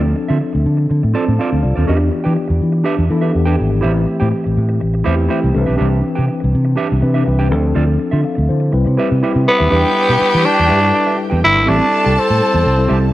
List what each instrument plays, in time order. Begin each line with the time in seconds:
Already playing: fingered electric bass D2, tine electric piano F3 C4 D4 A4
0.03 muted clean electric guitar stroke
0.15 muted clean electric guitar stroke
0.28 fingered electric bass D3, clean electric guitar C4 F4 A4 E5
0.40 muted clean electric guitar stroke
0.53 fingered electric bass D2, muted clean electric guitar stroke
0.66 fingered electric bass D3
0.77 muted clean electric guitar stroke
0.90 fingered electric bass D3, muted clean electric guitar stroke
1.03 fingered electric bass A2, muted clean electric guitar stroke
1.14 clean electric guitar C4 F4 A4 D5, tine electric piano C5 A5
1.27 fingered electric bass A2, muted clean electric guitar stroke
1.39 clean electric guitar C4 F4 A4 D5, tine electric piano A4 F5
1.52 fingered electric bass D2, muted clean electric guitar stroke
1.63 fingered electric bass C2, tine electric piano F4 D5, muted clean electric guitar stroke
1.76 fingered electric bass D#2, clean electric guitar C4 F4 A4 D5
1.87 fingered electric bass E2, tine electric piano E3 B3 D4 G4, clean electric guitar D4 G4 B4 E5
2.00 muted clean electric guitar stroke
2.11 muted clean electric guitar stroke
2.24 fingered electric bass E3, clean electric guitar D4 G4 B4 G5
2.35 muted clean electric guitar stroke
2.48 fingered electric bass E2, muted clean electric guitar stroke
2.62 fingered electric bass E3
2.72 muted clean electric guitar stroke
2.84 clean electric guitar D4 G4 B4 E5
2.97 fingered electric bass E2, muted clean electric guitar stroke
3.09 tine electric piano E3 B3 D4 A4, fingered electric bass E3, muted clean electric guitar stroke
3.21 clean electric guitar D4 G4 B4 E5
3.33 fingered electric bass E2, tine electric piano E3 B3 D4 G4, muted clean electric guitar stroke
3.46 clean electric guitar D4 G4 B4 G5
3.58 fingered electric bass G#1, muted clean electric guitar stroke
3.70 muted clean electric guitar stroke
3.81 fingered electric bass A1, tine electric piano E3 A3, clean electric guitar E4 G4 C5 E5
3.85 tine electric piano B3 G4
3.91 tine electric piano C4, muted clean electric guitar stroke
4.06 muted clean electric guitar stroke
4.20 fingered electric bass A2, clean electric guitar E4 G4 C5 G5
4.31 muted clean electric guitar stroke
4.44 fingered electric bass A1, muted clean electric guitar stroke
4.57 fingered electric bass A2
4.69 muted clean electric guitar stroke
4.80 fingered electric bass A1, muted clean electric guitar stroke
4.94 muted clean electric guitar stroke
5.04 fingered electric bass E2, tine electric piano E3 A3 C4 G4, clean electric guitar E4 G4 C5 E5
5.17 muted clean electric guitar stroke
5.29 tine electric piano E3 A3 C4 G4 G5, clean electric guitar E4 G4 C5 E5
5.42 fingered electric bass C2, muted clean electric guitar stroke
5.53 fingered electric bass C2, tine electric piano E3 C4 D4 A4, muted clean electric guitar stroke
5.61 tine electric piano B4
5.66 fingered electric bass B1, clean electric guitar D4 G4 B4 E5
5.77 clean electric guitar D4 G4 B4 E5
5.81 fingered electric bass C2
5.90 muted clean electric guitar stroke
6.01 muted clean electric guitar stroke
6.15 fingered electric bass C3, clean electric guitar D4 G4 B4 G5
6.27 muted clean electric guitar stroke
6.40 fingered electric bass C2, muted clean electric guitar stroke
6.55 fingered electric bass C3
6.65 muted clean electric guitar stroke
6.76 clean electric guitar D4 G4 B4 E5
6.90 fingered electric bass C2, muted clean electric guitar stroke
7.01 fingered electric bass C3, tine electric piano E3 C4 D4 B4, muted clean electric guitar stroke
7.14 clean electric guitar D4 G4 B4 E5
7.25 fingered electric bass C2, tine electric piano E3 C4 D4 B4, muted clean electric guitar stroke
7.39 clean electric guitar D4 G4 B4 G5
7.50 fingered electric bass D2, tine electric piano F3 C4 D4 A4, muted clean electric guitar stroke
7.63 muted clean electric guitar stroke
7.74 fingered electric bass D2, clean electric guitar C4 F4 A4 D5
7.87 muted clean electric guitar stroke
7.99 muted clean electric guitar stroke
8.11 fingered electric bass D3, clean electric guitar C4 F4 A4 E5
8.23 tine electric piano A4 F5, muted clean electric guitar stroke
8.35 fingered electric bass D2, muted clean electric guitar stroke
8.49 fingered electric bass D3, tine electric piano E4 C5
8.60 muted clean electric guitar stroke
8.72 fingered electric bass C2, tine electric piano G3 C4 E4 B4, muted clean electric guitar stroke
8.85 fingered electric bass C3, muted clean electric guitar stroke
8.97 tine electric piano G3 C4 E4 B4, clean electric guitar E4 G4 B4 E5
9.11 fingered electric bass C3, muted clean electric guitar stroke
9.23 clean electric guitar E4 G4 B4 E5, tine electric piano B4 G5
9.34 fingered electric bass C3, muted clean electric guitar stroke
9.46 tenor saxophone B3, tine electric piano G4 E5, muted clean electric guitar stroke
9.58 fingered electric bass D#2, clean electric guitar E4 G4 B4 E5
9.70 fingered electric bass E2, tine electric piano G3 D4 E4 B4, clean electric guitar D4 G4 B4 E5, violin section G4 G5
9.84 muted clean electric guitar stroke
9.94 muted clean electric guitar stroke
10.08 fingered electric bass B2, clean electric guitar D4 G4 B4 G5
10.20 muted clean electric guitar stroke, muted fingered electric bass stroke
10.33 fingered electric bass E3, muted clean electric guitar stroke
10.44 tine electric piano G3 D4 E4 B4, tenor saxophone D4
10.58 fingered electric bass E2, muted clean electric guitar stroke
10.68 fingered electric bass G2, clean electric guitar D4 G4 B4 E5
10.81 tine electric piano G3 D4 E4 A4, muted clean electric guitar stroke
10.89 tine electric piano B4
10.94 muted clean electric guitar stroke
11.07 clean electric guitar D4 G4 B4 E5
11.18 muted clean electric guitar stroke
11.30 fingered electric bass E2, clean electric guitar D4 G4 B4 G5
11.43 fingered electric bass G1, tenor saxophone E4, muted clean electric guitar stroke
11.55 fingered electric bass G#1, muted clean electric guitar stroke
11.66 fingered electric bass A1, tine electric piano G3 C4 E4 G4, clean electric guitar C4 G4 A4 E5, tenor saxophone D4, violin section A4 A5
11.75 tine electric piano A4
11.80 muted clean electric guitar stroke
11.91 muted clean electric guitar stroke
12.04 fingered electric bass C2, clean electric guitar C4 G4 A4 G5
12.15 tenor saxophone C4, muted clean electric guitar stroke
12.28 fingered electric bass A2, muted clean electric guitar stroke
12.41 tine electric piano G3 C4 E4 A4
12.52 fingered electric bass E2, muted clean electric guitar stroke
12.64 fingered electric bass C2, muted clean electric guitar stroke
12.77 tine electric piano G3 C4 E4 A4, muted clean electric guitar stroke
12.88 fingered electric bass C2, clean electric guitar C4 G4 A4 E5
13.00 muted clean electric guitar stroke